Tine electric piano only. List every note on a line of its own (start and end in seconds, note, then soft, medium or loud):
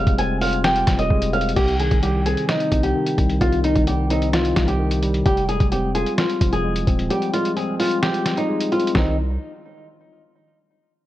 0.00 0.87 G3 medium
0.00 1.10 G#3 medium
0.00 0.18 C4 medium
0.00 0.41 F4 loud
0.18 1.32 C4 medium
0.41 1.57 F4 medium
0.64 1.56 G4 medium
0.87 1.56 G3 medium
1.10 1.57 G#3 loud
1.34 1.57 C4 medium
1.56 2.71 C3 medium
1.80 2.94 D#3 medium
2.03 3.17 G3 medium
2.26 3.41 C4 medium
2.49 3.64 D#4 medium
2.72 3.40 C3 medium
2.95 3.63 D#3 medium
3.18 3.86 G3 medium
3.41 4.55 C3 medium
3.64 4.78 D#3 medium
3.87 5.02 G3 medium
4.10 5.26 C4 loud
4.33 5.26 D#4 medium
4.56 5.26 C3 medium
4.80 5.26 D#3 medium
5.03 5.25 G3 medium
5.26 6.41 G3 medium
5.49 6.63 G#3 medium
5.72 6.86 C4 medium
5.95 7.10 F4 medium
6.41 7.56 F3 medium
6.64 7.32 G#3 medium
6.87 7.55 C4 medium
7.10 8.25 G3 medium
7.33 8.48 G#3 medium
7.56 8.71 C4 medium
7.80 8.95 F4 loud
8.03 8.95 G4 medium
8.26 8.94 G3 medium
8.49 8.95 G#3 medium
8.72 8.94 C4 medium
8.95 9.17 D#3 medium
8.95 9.16 G3 medium
8.95 9.16 C4 medium
8.95 9.16 D#4 loud